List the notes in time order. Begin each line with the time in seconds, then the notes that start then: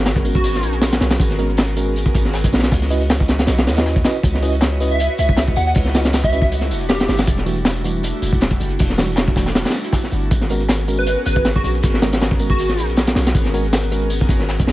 Already playing: G#1 B3 C#4 F#4 G#4 A#4
0.06 snare, closed hi-hat, tambourine
0.16 kick
0.25 G#3 B3 C#4 F#4 G#4 A#4, closed hi-hat, tambourine
0.35 F#4, kick
0.44 closed hi-hat, tambourine
0.54 snare, closed hi-hat
0.63 A#1, closed hi-hat, tambourine
0.73 closed hi-hat
0.81 snare, closed hi-hat, tambourine
0.92 snare, closed hi-hat
1.00 B1 B3 C#4 F#4 G#4 A#4, snare, closed hi-hat, tambourine
1.11 snare, closed hi-hat, tambourine
1.19 G#1 B3 C#4 F#4 G#4 A#4, kick, closed hi-hat, tambourine
1.30 snare, closed hi-hat
1.39 G#3 B3 C#4 F#4 A#4, closed hi-hat, tambourine
1.49 B3 C#4 F#4 G#4 A#4, closed hi-hat
1.57 snare, closed hi-hat, tambourine
1.68 closed hi-hat
1.77 G#3 B3 C#4 F#4 G#4 A#4, closed hi-hat, tambourine
1.96 closed hi-hat, tambourine
2.06 kick
2.15 G#1, kick, closed hi-hat, tambourine
2.25 snare
2.33 snare, closed hi-hat, tambourine
2.44 kick, closed hi-hat
2.52 A#1 B3 C#4 F#4 G#4 A#4, snare, closed hi-hat, tambourine
2.58 snare, closed hi-hat
2.63 snare, closed hi-hat
2.71 C#2 E4 F#4 B4 C#5 D#5, kick, closed hi-hat, open hi-hat
2.82 snare
2.90 C#4 E4 F#4 B4 D#5, closed hi-hat, tambourine
3.01 E4 F#4 B4 C#5 D#5, closed hi-hat
3.10 snare, closed hi-hat, tambourine
3.20 kick
3.28 E4 F#4 B4 C#5 D#5, snare, closed hi-hat, tambourine
3.39 snare, closed hi-hat
3.47 B1, snare, closed hi-hat, tambourine
3.58 snare, closed hi-hat
3.67 D#2 E4 F#4 B4 C#5 D#5, snare, closed hi-hat, tambourine
3.77 C#4 E4 F#4 B4 D#5, snare, closed hi-hat
3.86 snare, closed hi-hat, tambourine
3.96 kick, snare
4.04 C#4 E4 F#4 B4 C#5 D#5, snare, closed hi-hat, tambourine
4.23 C#2 E4 F#4 B4 C#5 D#5, kick, closed hi-hat, tambourine
4.35 snare, closed hi-hat
4.43 C#4 E4 F#4 B4 D#5, closed hi-hat, tambourine
4.52 E4 F#4 B4 C#5 D#5, closed hi-hat
4.61 snare, closed hi-hat, tambourine
4.72 closed hi-hat
4.80 C#4 E4 F#4 B4 C#5 D#5, closed hi-hat, tambourine
4.91 E5
5.00 closed hi-hat, tambourine
5.18 C#2 E5, closed hi-hat, tambourine
5.29 kick
5.37 snare, closed hi-hat, tambourine
5.48 kick
5.56 D#2 E4 F#4 B4 C#5 D#5 F#5, closed hi-hat, tambourine
5.67 F#5, closed hi-hat
5.75 C#2 E4 F#4 B4 C#5 D#5, kick, closed hi-hat, open hi-hat
5.85 snare
5.95 C#4 E4 F#4 B4 D#5, snare, closed hi-hat, tambourine
6.05 E4 F#4 B4 C#5 D#5, snare, closed hi-hat
6.13 snare, closed hi-hat, tambourine
6.24 E5, kick
6.32 G3 A3 C#4 D4 E4 F#4 B4 D#5, closed hi-hat, tambourine
6.42 kick
6.52 closed hi-hat, tambourine
6.61 snare, closed hi-hat
6.70 E1, closed hi-hat, tambourine
6.81 closed hi-hat
6.89 G4, snare, closed hi-hat, tambourine
7.00 snare, closed hi-hat
7.08 G1 G3 A3 D4 E4 F#4, snare, closed hi-hat, tambourine
7.18 snare, closed hi-hat, tambourine
7.27 E1 G3 A3 D4 E4 F#4, kick, closed hi-hat, tambourine
7.38 snare, closed hi-hat
7.46 E3 G3 A3 D4 F#4, closed hi-hat, tambourine
7.56 G3 A3 D4 E4 F#4, closed hi-hat
7.65 snare, closed hi-hat, tambourine
7.76 closed hi-hat
7.84 E3 G3 A3 D4 E4 F#4, closed hi-hat, tambourine
8.03 closed hi-hat, tambourine
8.22 E1, closed hi-hat, tambourine
8.33 kick
8.41 snare, closed hi-hat, tambourine
8.51 kick
8.60 F#1 G3 A3 D4 E4 F#4, closed hi-hat, tambourine
8.70 closed hi-hat
8.79 E1 G3 A3 D4 E4 F#4, kick, closed hi-hat, open hi-hat
8.90 snare
8.98 E3 G3 A3 D4 F#4, snare, closed hi-hat, tambourine
9.08 G3 A3 D4 E4 F#4
9.16 snare, closed hi-hat, tambourine
9.18 snare
9.28 kick
9.35 E3 G3 A3 D4 E4 F#4, kick, snare, closed hi-hat, tambourine
9.46 snare, tambourine
9.55 snare, closed hi-hat, tambourine
9.65 snare, closed hi-hat, tambourine
9.70 snare, closed hi-hat
9.74 snare, tambourine
9.84 closed hi-hat
9.93 kick, snare, closed hi-hat, tambourine
10.03 snare
10.11 G1 G3 A3 D4 E4 F#4, closed hi-hat, tambourine
10.31 G#1 B3 C#4 F#4 G#4 A#4, kick, closed hi-hat, tambourine
10.41 snare, closed hi-hat
10.50 G#3 B3 C#4 F#4 A#4, closed hi-hat, tambourine
10.60 B3 C#4 F#4 G#4 A#4, closed hi-hat
10.69 snare, closed hi-hat, tambourine
10.80 closed hi-hat
10.88 G#3 B3 C#4 F#4 G#4 A#4, closed hi-hat, tambourine
10.99 B4
11.07 closed hi-hat, tambourine
11.25 G#1 B4, closed hi-hat, tambourine
11.36 kick
11.45 snare, closed hi-hat, tambourine
11.56 F#4, kick
11.63 A#1 B3 C#4 F#4 G#4 A#4, closed hi-hat, tambourine
11.75 closed hi-hat
11.82 G#1 B3 C#4 F#4 G#4 A#4, kick, closed hi-hat, open hi-hat
11.94 snare
12.02 G#3 B3 C#4 F#4 A#4, snare, closed hi-hat, tambourine
12.12 B3 C#4 F#4 G#4 A#4, snare, closed hi-hat
12.20 snare, closed hi-hat, tambourine
12.31 kick
12.39 G#3 B3 C#4 F#4 G#4 A#4, closed hi-hat, tambourine
12.50 F#4, kick
12.58 closed hi-hat, tambourine
12.69 snare, closed hi-hat
12.78 A#1, closed hi-hat, tambourine
12.89 closed hi-hat
12.96 snare, closed hi-hat, tambourine
13.07 snare, closed hi-hat
13.15 B1 B3 C#4 F#4 G#4 A#4, snare, closed hi-hat, tambourine
13.26 snare, closed hi-hat, tambourine
13.35 G#1 B3 C#4 F#4 G#4 A#4, kick, closed hi-hat, tambourine
13.45 snare, closed hi-hat
13.54 G#3 B3 C#4 F#4 A#4, closed hi-hat, tambourine
13.64 B3 C#4 F#4 G#4 A#4, closed hi-hat
13.73 snare, closed hi-hat, tambourine
13.83 closed hi-hat
13.91 G#3 B3 C#4 F#4 G#4 A#4, closed hi-hat, tambourine
14.10 closed hi-hat, tambourine
14.21 kick
14.29 G#1, kick, closed hi-hat, tambourine
14.40 snare
14.49 snare, closed hi-hat, tambourine
14.59 kick, closed hi-hat
14.67 A#1 B3 C#4 F#4 G#4 A#4, snare, closed hi-hat, tambourine